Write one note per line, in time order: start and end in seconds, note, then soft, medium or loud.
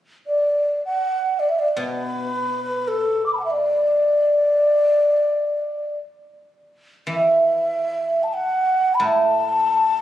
0.26 0.81 D5 medium
0.85 1.41 F#5 medium
1.39 1.50 D5 medium
1.49 1.60 E5 medium
1.59 1.68 D5 medium
1.68 1.80 D5 soft
1.77 4.66 B2 soft
1.77 2.89 B4 medium
2.88 3.25 A4 medium
3.26 3.32 D6 soft
3.33 3.38 A5 soft
3.33 3.36 B5 soft
3.39 3.44 F#5 soft
3.44 3.52 E5 soft
3.50 5.97 D5 medium
7.07 9.91 E3 soft
7.07 8.25 E5 medium
8.23 8.36 A5 medium
8.34 8.96 F#5 medium
8.94 9.04 B5 medium
9.00 10.02 A2 soft
9.00 10.02 A5 medium